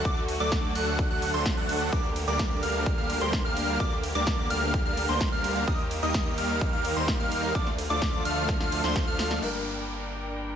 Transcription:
Already playing: string section D3 A3 F#4
0.05 detuned saw bass D2, supersaw synth F#3 A3 D4 A4 D5, digital synth lead D6, kick, closed hi-hat, ride
0.17 closed hi-hat
0.28 open hi-hat, ride
0.40 detuned saw bass D2, supersaw synth F#3 A3 D4 A4 D5, digital synth lead D6
0.52 kick, snare, closed hi-hat, ride
0.64 closed hi-hat
0.75 detuned saw bass D2, supersaw synth F#3 A3 D4 A4 F#5, digital synth lead F#6, open hi-hat, ride
0.87 closed hi-hat
0.99 kick, closed hi-hat, ride
1.10 detuned saw bass D2, supersaw synth F#3 A3 D4 A4 F#5, digital synth lead F#6, closed hi-hat
1.22 open hi-hat, ride
1.34 detuned saw bass D2, supersaw synth F#3 A3 D4 A4 C5, digital synth lead C6, open hi-hat
1.46 kick, snare, ride
1.57 detuned saw bass D2, supersaw synth F#3 A3 D4 A4 F#5, digital synth lead F#6, closed hi-hat
1.69 open hi-hat, ride
1.81 closed hi-hat
1.92 detuned saw bass D2, supersaw synth G3 A#3 D4 A#4 D5, string section A#3 G4, digital synth lead D6, kick, closed hi-hat, ride
2.04 closed hi-hat
2.16 open hi-hat, ride
2.28 detuned saw bass D2, supersaw synth G3 A#3 D4 A#4 D5, digital synth lead D6, closed hi-hat
2.39 kick, snare, closed hi-hat, ride
2.51 closed hi-hat
2.63 detuned saw bass D2, supersaw synth G3 A#3 D4 A#4 F5, digital synth lead F6, open hi-hat, ride
2.75 closed hi-hat
2.86 kick, closed hi-hat, ride
2.98 detuned saw bass D2, supersaw synth G3 A#3 D4 A#4 F5, digital synth lead F6, closed hi-hat
3.10 open hi-hat, ride
3.21 detuned saw bass D2, supersaw synth G3 A#3 D4 A#4 C5, digital synth lead C6, closed hi-hat
3.33 kick, snare, closed hi-hat, ride
3.45 detuned saw bass D2, supersaw synth G3 A#3 D4 A#4 F5, digital synth lead F6, closed hi-hat
3.57 open hi-hat, ride
3.68 closed hi-hat
3.80 detuned saw bass D2, supersaw synth G3 A#3 D4 D5, digital synth lead D6, kick, closed hi-hat, ride
3.92 closed hi-hat
4.03 open hi-hat, ride
4.15 detuned saw bass D2, supersaw synth G3 A#3 D4 A#4 D5, digital synth lead D6, closed hi-hat
4.27 kick, snare, closed hi-hat, ride
4.39 closed hi-hat
4.50 detuned saw bass D2, supersaw synth G3 A#3 D4 A#4 F5, digital synth lead F6, open hi-hat, ride
4.62 closed hi-hat
4.74 kick, closed hi-hat, ride
4.86 detuned saw bass D2, supersaw synth G3 A#3 D4 A#4 F5, digital synth lead F6, closed hi-hat
4.97 open hi-hat, ride
5.09 detuned saw bass D2, supersaw synth G3 A#3 D4 A#4 C5, digital synth lead C6, open hi-hat
5.21 kick, snare, ride
5.32 detuned saw bass D2, supersaw synth G3 A#3 D4 A#4 F5, digital synth lead F6, closed hi-hat
5.44 open hi-hat, ride
5.56 closed hi-hat
5.68 detuned saw bass D#2, string section D#3 A#3, supersaw synth G3 A#3 D#4 D#5, digital synth lead D#6, kick, closed hi-hat, ride
5.79 closed hi-hat
5.91 open hi-hat, ride
6.03 detuned saw bass D#2, supersaw synth G3 A#3 D#4 A#4 D#5, digital synth lead D#6, closed hi-hat
6.14 kick, snare, closed hi-hat, ride
6.26 closed hi-hat
6.38 detuned saw bass D#2, supersaw synth G3 A#3 D#4 A#4 F5, digital synth lead F6, open hi-hat, ride
6.50 closed hi-hat
6.61 kick, closed hi-hat, ride
6.73 detuned saw bass D#2, supersaw synth G3 A#3 D#4 A#4 F5, digital synth lead F6, closed hi-hat
6.85 open hi-hat, ride
6.96 detuned saw bass D#2, supersaw synth G3 A#3 D#4 A#4 C5, digital synth lead C6, closed hi-hat
7.08 kick, snare, closed hi-hat, ride
7.20 detuned saw bass D#2, supersaw synth G3 A#3 D#4 A#4 F5, digital synth lead F6, closed hi-hat
7.32 open hi-hat, ride
7.43 closed hi-hat
7.55 detuned saw bass D2, string section D3 A3 F4, supersaw synth F3 A3 D4 A4 D5, digital synth lead D6, kick, closed hi-hat, ride
7.67 snare, closed hi-hat
7.78 open hi-hat, ride
7.90 detuned saw bass D2, supersaw synth F3 A3 D4 A4 D5, digital synth lead D6, closed hi-hat
8.02 kick, snare, closed hi-hat, ride
8.14 closed hi-hat
8.25 detuned saw bass D2, supersaw synth F3 A3 D4 A4 F5, digital synth lead F6, open hi-hat, ride
8.37 closed hi-hat
8.49 kick, snare, closed hi-hat, ride
8.60 detuned saw bass D2, supersaw synth F3 A3 D4 A4 F5, digital synth lead F6, snare, closed hi-hat
8.72 open hi-hat, ride
8.84 detuned saw bass D2, supersaw synth F3 A3 D4 A4 C5, digital synth lead C6, snare
8.96 kick, snare, closed hi-hat, ride
9.07 detuned saw bass D2, supersaw synth F3 A3 D4 A4 F5, digital synth lead F6, closed hi-hat
9.19 snare, open hi-hat, ride
9.31 snare, closed hi-hat
9.41 detuned saw bass G1, grand piano G2 G3 A#3 D4 A#4, string section D4 A#4 G5, crash, downlifter

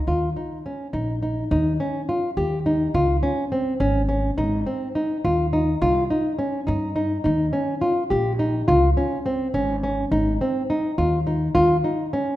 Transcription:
0.07 upright bass D#2, nylon-string guitar F4
0.36 nylon-string guitar D#4
0.66 nylon-string guitar C#4
0.93 upright bass A#1, nylon-string guitar D#4
1.23 nylon-string guitar D#4
1.51 upright bass D#2, nylon-string guitar D#4
1.80 nylon-string guitar C#4
2.09 nylon-string guitar F4
2.37 upright bass D#2, nylon-string guitar G4
2.66 nylon-string guitar D#4
2.94 upright bass C#2, nylon-string guitar F4
3.23 nylon-string guitar C#4
3.52 nylon-string guitar C4
3.80 upright bass G#1, nylon-string guitar C#4
4.09 nylon-string guitar C#4
4.38 upright bass G#1, nylon-string guitar D#4
4.66 nylon-string guitar C4
4.95 nylon-string guitar D#4
5.24 upright bass D#2, nylon-string guitar F4
5.53 nylon-string guitar D#4
5.82 upright bass C2, nylon-string guitar F4
6.10 nylon-string guitar D#4
6.39 nylon-string guitar C#4
6.67 upright bass G2, nylon-string guitar D#4
6.96 nylon-string guitar D#4
7.24 upright bass D#2, nylon-string guitar D#4
7.53 nylon-string guitar C#4
7.81 nylon-string guitar F4
8.10 upright bass A#1, nylon-string guitar G4
8.39 nylon-string guitar D#4
8.68 upright bass C#2, nylon-string guitar F4
8.97 nylon-string guitar C#4
9.26 nylon-string guitar C4
9.54 upright bass G#1, nylon-string guitar C#4
9.83 nylon-string guitar C#4
10.11 upright bass G#1, nylon-string guitar D#4
10.41 nylon-string guitar C4
10.70 nylon-string guitar D#4
10.98 upright bass D#2, nylon-string guitar F4
11.27 nylon-string guitar D#4
11.55 upright bass D#2, nylon-string guitar F4
11.84 nylon-string guitar D#4
12.13 nylon-string guitar C#4

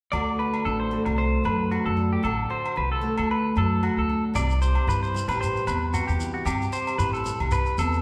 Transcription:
0.12 upright bass D2, steel-string acoustic guitar D3 A3 D4 F#4 A4, clean electric guitar D5, low agogo
0.39 steel-string acoustic guitar F#4, clean electric guitar B4
0.54 low agogo
0.65 upright bass A1, steel-string acoustic guitar D4, clean electric guitar A4
0.80 clean electric guitar C5
0.91 steel-string acoustic guitar A3 F#4
1.05 upright bass C2, muted clean electric guitar stroke, low agogo
1.18 steel-string acoustic guitar A4, clean electric guitar C5
1.44 upright bass F#2, steel-string acoustic guitar A2, clean electric guitar B4, low agogo
1.71 steel-string acoustic guitar F#4, clean electric guitar F#4, low agogo
1.86 upright bass F#2, clean electric guitar A4
1.97 steel-string acoustic guitar D4
2.13 clean electric guitar G4
2.23 upright bass A1, steel-string acoustic guitar D3, clean electric guitar A4, low agogo
2.50 steel-string acoustic guitar F#4, clean electric guitar C5
2.66 low agogo
2.76 upright bass C2, clean electric guitar B4, muted steel-string acoustic guitar stroke
2.92 clean electric guitar A4
3.01 steel-string acoustic guitar A3 F#4
3.18 upright bass D2, clean electric guitar A4, low agogo
3.31 clean electric guitar B4, muted steel-string acoustic guitar stroke
3.56 upright bass F#2, steel-string acoustic guitar A2, clean electric guitar A4, low agogo
3.83 steel-string acoustic guitar F#4, clean electric guitar F#4, low agogo
3.97 upright bass D2, clean electric guitar A4
4.09 steel-string acoustic guitar D4
4.34 upright bass C2, steel-string acoustic guitar C3, clean electric guitar D5, low agogo, shekere
4.50 shekere
4.62 steel-string acoustic guitar G4, clean electric guitar C5, shekere
4.75 low agogo
4.87 upright bass G2, steel-string acoustic guitar E4, clean electric guitar B4, shekere
5.03 clean electric guitar C5, shekere
5.14 steel-string acoustic guitar G3 E4, shekere
5.28 upright bass A1, steel-string acoustic guitar G4, clean electric guitar B4, low agogo, shekere
5.41 steel-string acoustic guitar B4, clean electric guitar C5, shekere
5.56 shekere
5.67 upright bass E2, steel-string acoustic guitar C3, clean electric guitar B4, low agogo, shekere
5.94 clean electric guitar F#4, steel-string acoustic guitar G4, low agogo, shekere
6.08 upright bass E2, clean electric guitar G4, shekere
6.19 steel-string acoustic guitar E4, shekere
6.34 clean electric guitar F#4
6.45 upright bass G2, steel-string acoustic guitar C3, clean electric guitar G4, low agogo, shekere
6.61 shekere
6.72 steel-string acoustic guitar G4, clean electric guitar C5, shekere
6.87 low agogo, shekere
6.98 upright bass A1, steel-string acoustic guitar E4, clean electric guitar B4, shekere
7.13 clean electric guitar A4, shekere
7.24 steel-string acoustic guitar G3 G4, shekere
7.40 upright bass C2, low agogo
7.51 steel-string acoustic guitar B4, clean electric guitar B4, shekere
7.66 shekere
7.78 upright bass E2, steel-string acoustic guitar C3, clean electric guitar A4, low agogo, shekere
7.93 shekere

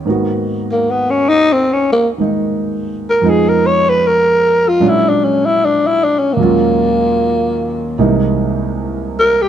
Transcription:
0.05 grand piano G#2 D#3 A#3 B3
0.10 grand piano F#4
0.72 tenor saxophone A#3
0.91 tenor saxophone B3
1.10 tenor saxophone C#4
1.29 tenor saxophone D#4
1.53 tenor saxophone C4
1.73 tenor saxophone C#4
1.92 tenor saxophone A#3
2.18 grand piano D#3 G#3 A#3 D#4
3.10 tenor saxophone A#4
3.22 grand piano F2 F3 G#3 B3 D#4
3.30 tenor saxophone G#4
3.49 tenor saxophone A#4
3.66 tenor saxophone C#5
3.89 tenor saxophone B4
4.07 tenor saxophone A#4
4.68 tenor saxophone F4
4.80 grand piano A#2 F#3 G#3 C#4 D4
4.89 tenor saxophone E4
5.09 tenor saxophone D4
5.25 tenor saxophone C#4
5.46 tenor saxophone E4
5.65 tenor saxophone D4
5.87 tenor saxophone E4
6.04 tenor saxophone D4
6.19 tenor saxophone C#4
6.33 grand piano D#2, tenor saxophone A#3
6.39 grand piano A#2 F#3 G#3 C#4 F4
7.98 grand piano C2 C3 E3 G#3 A#3 D#4
9.19 tenor saxophone A#4
9.42 tenor saxophone G4

